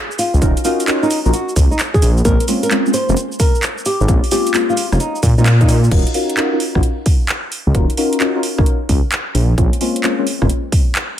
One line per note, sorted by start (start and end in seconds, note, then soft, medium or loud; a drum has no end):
0.11 cabasa soft
0.19 0.42 F4 medium
0.19 open hi-hat loud
0.19 cabasa medium
0.34 0.40 C#2 loud
0.34 cabasa soft
0.42 0.54 D#1 medium
0.42 0.52 C#4 medium
0.42 0.52 D#4 medium
0.42 0.52 F4 medium
0.42 0.52 F#4 medium
0.42 0.52 A#4 loud
0.42 kick loud
0.42 closed hi-hat medium
0.42 cabasa soft
0.57 closed hi-hat medium
0.57 cabasa soft
0.65 0.86 C#4 medium
0.65 0.86 D#4 medium
0.65 0.84 F4 loud
0.65 0.86 F4 medium
0.65 0.86 F#4 medium
0.65 0.86 A#4 medium
0.65 open hi-hat loud
0.65 cabasa medium
0.80 closed hi-hat medium
0.80 cabasa soft
0.88 0.98 C#4 loud
0.88 0.98 D#4 medium
0.88 0.98 F4 medium
0.88 0.98 F#4 medium
0.88 0.98 A#4 loud
0.88 clap loud
0.88 closed hi-hat medium
0.88 cabasa soft
1.03 1.08 C#4 medium
1.03 1.08 D#4 medium
1.03 1.18 D#4 loud
1.03 1.08 F4 medium
1.03 1.08 F#4 medium
1.03 1.08 A#4 medium
1.03 cabasa soft
1.11 open hi-hat loud
1.11 cabasa medium
1.26 1.32 A#1 medium
1.26 1.31 C#4 loud
1.26 1.31 D#4 medium
1.26 1.31 F4 medium
1.26 1.31 F#4 medium
1.26 1.31 A#4 loud
1.26 cabasa soft
1.33 1.53 F#4 medium
1.33 closed hi-hat medium
1.33 cabasa soft
1.49 cabasa soft
1.56 1.68 C#2 medium
1.56 kick loud
1.56 open hi-hat loud
1.56 cabasa medium
1.71 1.79 D#4 medium
1.71 cabasa soft
1.79 clap loud
1.79 closed hi-hat medium
1.79 cabasa soft
1.94 2.10 G#4 loud
1.94 kick loud
1.94 cabasa soft
2.02 2.22 A#1 medium
2.02 open hi-hat loud
2.02 cabasa medium
2.17 cabasa soft
2.25 2.37 A#1 loud
2.25 2.35 G#3 medium
2.25 2.35 A#3 medium
2.25 2.35 C4 medium
2.25 2.35 C#4 medium
2.25 2.35 F4 loud
2.25 2.44 A#4 loud
2.25 kick loud
2.25 closed hi-hat medium
2.25 cabasa soft
2.40 closed hi-hat medium
2.40 cabasa soft
2.48 2.69 G#3 medium
2.48 2.69 A#3 medium
2.48 2.69 C4 medium
2.48 2.69 C#4 medium
2.48 2.69 F4 medium
2.48 open hi-hat loud
2.48 cabasa medium
2.63 2.79 A#4 medium
2.63 closed hi-hat medium
2.63 cabasa soft
2.71 2.81 G#3 loud
2.71 2.81 A#3 medium
2.71 2.81 C4 medium
2.71 2.81 C#4 medium
2.71 2.81 F4 loud
2.71 clap loud
2.71 closed hi-hat medium
2.71 cabasa soft
2.86 2.91 G#3 medium
2.86 2.91 A#3 medium
2.86 2.91 C4 medium
2.86 2.91 C#4 medium
2.86 2.91 F4 medium
2.86 cabasa soft
2.94 3.17 C5 loud
2.94 open hi-hat loud
2.94 cabasa medium
3.09 3.15 F1 medium
3.09 3.14 G#3 medium
3.09 3.14 A#3 medium
3.09 3.14 C4 medium
3.09 3.14 C#4 medium
3.09 3.14 F4 loud
3.09 cabasa soft
3.17 closed hi-hat medium
3.17 cabasa soft
3.32 cabasa soft
3.40 3.63 A#4 medium
3.40 kick loud
3.40 open hi-hat loud
3.40 cabasa medium
3.55 cabasa soft
3.63 clap loud
3.63 closed hi-hat medium
3.63 cabasa soft
3.78 cabasa soft
3.86 4.09 G4 loud
3.86 open hi-hat loud
3.86 cabasa medium
4.01 4.07 G#1 loud
4.01 cabasa soft
4.08 4.20 A#1 loud
4.08 4.19 G#3 medium
4.08 4.19 A#3 medium
4.08 4.19 C4 medium
4.08 4.19 C#4 medium
4.08 4.19 F4 loud
4.08 kick loud
4.08 closed hi-hat medium
4.08 cabasa soft
4.24 open hi-hat medium
4.24 cabasa soft
4.31 4.52 G#3 medium
4.31 4.52 A#3 medium
4.31 4.52 C4 medium
4.31 4.52 C#4 medium
4.31 4.52 F4 medium
4.31 4.51 G4 loud
4.31 open hi-hat loud
4.31 cabasa medium
4.47 closed hi-hat medium
4.47 cabasa soft
4.54 4.64 G#3 loud
4.54 4.64 A#3 loud
4.54 4.64 C4 medium
4.54 4.64 C#4 medium
4.54 4.64 F4 loud
4.54 clap loud
4.54 closed hi-hat medium
4.54 cabasa soft
4.69 4.75 G#3 medium
4.69 4.75 A#3 medium
4.69 4.75 C4 medium
4.69 4.75 C#4 medium
4.69 4.75 F4 medium
4.69 4.85 F4 loud
4.69 cabasa soft
4.77 open hi-hat loud
4.77 cabasa medium
4.92 4.98 F1 medium
4.92 4.97 G#3 loud
4.92 4.97 A#3 medium
4.92 4.97 C4 medium
4.92 4.97 C#4 medium
4.92 4.97 F4 loud
4.92 cross-stick medium
4.92 cabasa soft
5.00 5.19 D#4 medium
5.00 closed hi-hat medium
5.00 cabasa soft
5.15 cabasa soft
5.23 5.35 A#2 medium
5.23 kick loud
5.23 open hi-hat loud
5.23 cabasa medium
5.38 5.89 A#2 medium
5.38 5.47 G#3 medium
5.38 5.47 A#3 medium
5.38 5.47 C4 medium
5.38 5.47 C#4 medium
5.38 5.46 D#4 medium
5.38 5.47 F4 loud
5.38 cabasa soft
5.46 clap loud
5.46 closed hi-hat medium
5.46 cabasa soft
5.61 5.66 G#3 medium
5.61 5.66 A#3 medium
5.61 5.66 C4 medium
5.61 5.66 C#4 medium
5.61 5.77 D#4 loud
5.61 5.66 F4 medium
5.61 kick loud
5.61 closed hi-hat soft
5.61 cabasa soft
5.69 cross-stick soft
5.69 open hi-hat loud
5.69 cabasa medium
5.84 cabasa soft
5.91 6.03 D#1 medium
5.91 6.02 C#4 medium
5.91 6.02 D#4 medium
5.91 6.02 F4 medium
5.91 6.02 F#4 medium
5.91 6.02 A#4 loud
5.91 kick loud
5.91 closed hi-hat medium
5.91 crash loud
6.07 closed hi-hat medium
6.14 6.35 C#4 medium
6.14 6.35 D#4 medium
6.14 6.35 F4 medium
6.14 6.35 F#4 medium
6.14 6.35 A#4 medium
6.14 open hi-hat loud
6.30 closed hi-hat medium
6.37 6.47 C#4 loud
6.37 6.48 D#4 medium
6.37 6.47 F4 medium
6.37 6.47 F#4 medium
6.37 6.47 A#4 loud
6.37 clap loud
6.37 closed hi-hat medium
6.52 6.58 C#4 medium
6.52 6.58 D#4 medium
6.52 6.58 F4 medium
6.52 6.58 F#4 medium
6.52 6.58 A#4 medium
6.60 open hi-hat medium
6.75 6.81 A#1 medium
6.75 6.81 C#4 medium
6.75 6.81 D#4 medium
6.75 6.81 F4 medium
6.75 6.81 F#4 medium
6.75 6.81 A#4 loud
6.75 kick medium
6.75 cross-stick medium
6.83 closed hi-hat medium
7.06 kick loud
7.06 open hi-hat loud
7.29 clap loud
7.29 closed hi-hat medium
7.52 open hi-hat medium
7.67 7.73 C#2 loud
7.75 7.86 D#1 medium
7.75 7.85 C#4 medium
7.75 7.85 D#4 medium
7.75 7.85 F4 medium
7.75 7.85 F#4 medium
7.75 7.85 A#4 medium
7.75 kick loud
7.75 closed hi-hat medium
7.90 closed hi-hat medium
7.97 8.19 C#4 medium
7.97 8.19 D#4 medium
7.97 8.19 F4 medium
7.97 8.19 F#4 medium
7.97 8.19 A#4 medium
7.97 open hi-hat loud
8.13 closed hi-hat medium
8.20 8.31 C#4 loud
8.20 8.31 D#4 medium
8.20 8.31 F4 medium
8.20 8.31 F#4 medium
8.20 8.31 A#4 loud
8.20 clap loud
8.20 closed hi-hat medium
8.36 8.41 C#4 medium
8.36 8.41 D#4 medium
8.36 8.41 F4 medium
8.36 8.41 F#4 medium
8.36 8.41 A#4 medium
8.43 open hi-hat loud
8.58 8.65 A#1 medium
8.58 8.64 C#4 loud
8.58 8.64 D#4 medium
8.58 8.64 F4 medium
8.58 8.64 F#4 medium
8.58 8.64 A#4 loud
8.58 kick loud
8.58 cross-stick medium
8.66 closed hi-hat medium
8.89 9.01 C#2 medium
8.89 kick medium
8.89 open hi-hat loud
9.12 clap loud
9.12 closed hi-hat medium
9.35 9.54 A#1 medium
9.35 open hi-hat medium
9.58 9.70 A#1 medium
9.58 9.68 G#3 medium
9.58 9.68 A#3 medium
9.58 9.68 C4 medium
9.58 9.68 C#4 medium
9.58 9.68 F4 medium
9.58 kick loud
9.58 closed hi-hat medium
9.73 closed hi-hat medium
9.81 10.02 G#3 medium
9.81 10.02 A#3 medium
9.81 10.02 C4 medium
9.81 10.02 C#4 medium
9.81 10.02 F4 medium
9.81 open hi-hat loud
9.96 closed hi-hat medium
10.04 10.14 G#3 medium
10.04 10.14 A#3 medium
10.04 10.14 C4 medium
10.04 10.14 C#4 medium
10.04 10.14 F4 loud
10.04 clap loud
10.04 closed hi-hat medium
10.19 10.24 G#3 medium
10.19 10.24 A#3 medium
10.19 10.24 C4 medium
10.19 10.24 C#4 medium
10.19 10.24 F4 medium
10.27 open hi-hat medium
10.42 10.48 F1 medium
10.42 10.47 G#3 medium
10.42 10.47 A#3 medium
10.42 10.47 C4 medium
10.42 10.47 C#4 medium
10.42 10.47 F4 loud
10.42 kick medium
10.42 cross-stick medium
10.50 closed hi-hat medium
10.72 kick loud
10.72 open hi-hat loud
10.95 clap loud
10.95 closed hi-hat medium